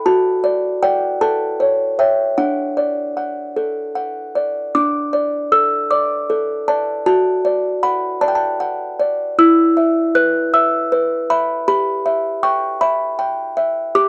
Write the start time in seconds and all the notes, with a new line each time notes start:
0.06 F#4 A5
0.44 D5
0.83 D5 F#5 G5
1.21 A4 A5
1.60 C#5
1.99 C#5 E5 G5
2.38 D4 F#5
2.77 D5
3.17 F#5
3.56 A4
3.95 F#5
4.35 D5
4.75 D4 D6
5.13 D5
5.52 A4 E6
5.91 D5 D6
6.30 A4
6.68 D5 A5
7.06 F#4 A5
7.45 D5
7.83 F#5 B5
8.21 D5 A5
8.28 G5
8.35 A5
8.60 F#5
9.00 D5
9.38 E4 E6
9.77 E5
10.15 B4 F#6
10.54 E5 E6
10.92 B4
11.30 E5 B5
11.68 G4 B5
12.06 E5
12.43 G5 C#6
12.81 E5 B5
13.19 G5
13.57 E5
13.95 G4 D6